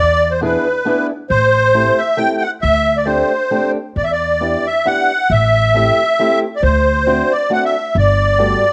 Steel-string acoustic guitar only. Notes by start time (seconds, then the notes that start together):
0.41 B3 D4 E4 G#4
0.85 B3 D4 E4 G#4
1.74 A3 C4 E4 G4
2.17 A3 C4 E4 G4
3.05 A3 C4 D4 G4
3.51 A3 C4 D4 G4
4.40 B3 D4 E4 G4
4.85 B3 D4 E4 G4
5.74 A3 C4 E4 G4
6.19 A3 C4 E4 G4
7.06 A3 C4 D4 F#4
7.50 A3 C4 D4 F#4
8.38 G3 A3 B3 F#4